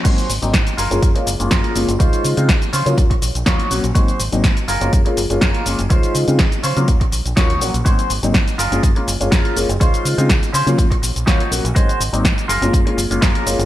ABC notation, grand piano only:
X:1
M:4/4
L:1/16
Q:1/4=123
K:Abmix
V:1 name="Grand piano"
[G,B,CE] z2 [G,B,CE] z3 [A,B,DF]2 [A,B,DF] z [A,B,DF]3 [A,B,DF] z | [A,EFc]3 [A,CEF] z3 [G,B,DF]2 z3 [G,B,DF] z [G,B,DG] z | [G,B,CE] z2 [G,B,CE] z3 [A,B,DF]2 [A,B,DF] z [A,B,DF]3 [A,B,DF] z | [A,EFc]3 [A,CEF] z3 [G,B,DF]2 z3 [G,B,DF] z [G,B,DG] z |
[G,B,CE] z2 [G,B,CE] z3 [A,B,DF]2 [A,B,DF] z [A,B,DF]3 [A,B,DF] z | [A,EFc]3 [A,CEF] z3 [G,B,DF]2 z3 [G,B,DF] z [G,B,DG] z | [G,B,CE] z2 [G,B,CE] z3 [A,B,DF]2 [A,B,DF] z [A,B,DF]3 [A,B,DF] z |]